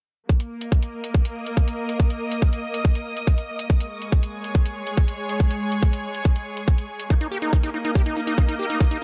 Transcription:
0.29 string section A#3, kick, closed hi-hat
0.40 closed hi-hat
0.49 string section A#4
0.61 string section D#5, closed hi-hat
0.72 kick, closed hi-hat
0.83 closed hi-hat
1.04 closed hi-hat
1.14 kick, closed hi-hat
1.25 closed hi-hat
1.33 string section D#6
1.46 closed hi-hat
1.57 kick, closed hi-hat
1.68 closed hi-hat
1.89 closed hi-hat
2.00 kick, closed hi-hat
2.10 closed hi-hat
2.32 closed hi-hat
2.42 kick, closed hi-hat
2.53 closed hi-hat
2.74 closed hi-hat
2.85 kick, closed hi-hat
2.95 closed hi-hat
3.17 closed hi-hat
3.27 kick, closed hi-hat
3.38 closed hi-hat
3.59 closed hi-hat
3.70 string section G#3, kick, closed hi-hat
3.80 closed hi-hat
3.87 string section C#6
4.02 closed hi-hat
4.06 string section G#4
4.12 kick, closed hi-hat
4.23 closed hi-hat
4.36 string section C#5
4.44 closed hi-hat
4.55 kick, closed hi-hat
4.66 closed hi-hat
4.87 closed hi-hat
4.97 kick, closed hi-hat
5.08 closed hi-hat
5.29 closed hi-hat
5.40 kick, closed hi-hat
5.51 closed hi-hat
5.72 closed hi-hat
5.83 kick, closed hi-hat
5.93 closed hi-hat
6.14 closed hi-hat
6.25 kick, closed hi-hat
6.36 closed hi-hat
6.57 closed hi-hat
6.68 kick, closed hi-hat
6.78 closed hi-hat
7.00 closed hi-hat
7.10 string section A#3, acid bass D#4, kick, closed hi-hat
7.21 acid bass D#4, closed hi-hat
7.32 acid bass G4
7.38 string section A#4
7.42 acid bass D#4, closed hi-hat
7.50 acid bass D#4, string section D#5, kick, closed hi-hat
7.63 acid bass D#4, string section D#6, closed hi-hat
7.74 acid bass D#4
7.85 acid bass D#4, closed hi-hat
7.95 acid bass G4, kick, closed hi-hat
8.06 acid bass D#4, closed hi-hat
8.17 acid bass D#4
8.27 acid bass D#4, closed hi-hat
8.38 acid bass D#4, kick, closed hi-hat
8.49 acid bass D#4, closed hi-hat
8.59 acid bass G4
8.70 acid bass D#4, closed hi-hat
8.80 acid bass D#4, kick, closed hi-hat
8.91 acid bass D#4, closed hi-hat

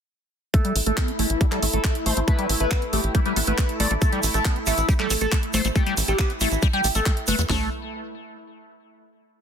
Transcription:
0.54 acid bass A3, synth texture A3 E4, analog synth lead A4, kick, closed hi-hat
0.65 acid bass G3, closed hi-hat
0.76 analog synth bass A1, open hi-hat
0.86 analog synth bass A1, acid bass A3, analog synth lead A4, closed hi-hat
0.97 acid bass B3, kick, clap, closed hi-hat
1.08 acid bass C4, closed hi-hat
1.19 analog synth bass A1, acid bass A3, analog synth lead E4, open hi-hat
1.30 analog synth bass A1, closed hi-hat
1.41 acid bass G3, kick, closed hi-hat
1.52 acid bass G3, analog synth lead A4, clap, closed hi-hat
1.62 analog synth bass A1, acid bass A3, open hi-hat
1.73 analog synth bass A1, acid bass A3, analog synth lead A4, closed hi-hat
1.84 acid bass A3, kick, clap, closed hi-hat
1.95 closed hi-hat
2.06 analog synth bass A1, acid bass A3, analog synth lead C5, open hi-hat
2.17 analog synth bass A1, acid bass A3, closed hi-hat
2.28 acid bass A3, analog synth lead B4, kick, closed hi-hat
2.39 acid bass G3, closed hi-hat
2.49 analog synth bass A1, open hi-hat
2.60 analog synth bass A1, acid bass A3, analog synth lead B4, closed hi-hat
2.71 acid bass B3, kick, clap, closed hi-hat
2.82 acid bass C4, closed hi-hat
2.93 analog synth bass A1, acid bass A3, analog synth lead G4, open hi-hat
3.04 analog synth bass A1, closed hi-hat
3.15 acid bass G3, kick, closed hi-hat
3.26 acid bass G3, analog synth lead B4, closed hi-hat
3.36 analog synth bass A1, acid bass A3, open hi-hat
3.47 analog synth bass A1, acid bass A3, analog synth lead B4, closed hi-hat
3.58 acid bass A3, kick, clap, closed hi-hat
3.69 closed hi-hat
3.80 analog synth bass A1, acid bass A3, analog synth lead D5, open hi-hat
3.91 analog synth bass A1, acid bass A3, closed hi-hat
4.02 acid bass A3, analog synth lead A4, kick, closed hi-hat, shaker
4.12 acid bass G3, closed hi-hat
4.23 analog synth bass A1, open hi-hat, shaker
4.34 analog synth bass A1, acid bass A3, analog synth lead A4, closed hi-hat, shaker
4.45 acid bass B3, kick, clap, closed hi-hat, shaker
4.56 acid bass C4, closed hi-hat
4.67 analog synth bass A1, acid bass A3, analog synth lead E4, open hi-hat, shaker
4.77 analog synth bass A1, closed hi-hat, shaker
4.89 acid bass G3, kick, closed hi-hat, shaker
4.99 acid bass G3, analog synth lead A4, clap, closed hi-hat
5.10 analog synth bass A1, acid bass A3, open hi-hat, shaker
5.20 analog synth bass A1, acid bass A3, analog synth lead A4, closed hi-hat, shaker
5.32 acid bass A3, kick, clap, closed hi-hat, shaker
5.43 closed hi-hat
5.54 analog synth bass A1, acid bass A3, analog synth lead C5, open hi-hat, shaker
5.65 analog synth bass A1, acid bass A3, closed hi-hat, shaker
5.76 acid bass A3, analog synth lead G4, kick, closed hi-hat, shaker
5.86 acid bass G3, closed hi-hat
5.97 analog synth bass A1, open hi-hat, shaker
6.08 analog synth bass A1, acid bass A3, analog synth lead G4, closed hi-hat, shaker
6.19 acid bass B3, kick, clap, closed hi-hat, shaker
6.30 acid bass C4, closed hi-hat
6.41 analog synth bass A1, acid bass A3, analog synth lead E4, open hi-hat, shaker
6.52 analog synth bass A1, closed hi-hat, shaker
6.62 acid bass G3, kick, closed hi-hat, shaker
6.73 acid bass G3, analog synth lead G4, closed hi-hat
6.84 analog synth bass A1, acid bass A3, open hi-hat, shaker
6.95 analog synth bass A1, acid bass A3, analog synth lead A4, closed hi-hat, shaker
7.06 acid bass A3, kick, clap, closed hi-hat, shaker
7.17 closed hi-hat
7.27 analog synth bass G1, acid bass A3, analog synth lead B4, open hi-hat, shaker
7.39 analog synth bass E2, closed hi-hat, shaker
7.49 analog synth bass A1, acid bass A3, analog synth lead A4, snare, floor tom, open hi-hat

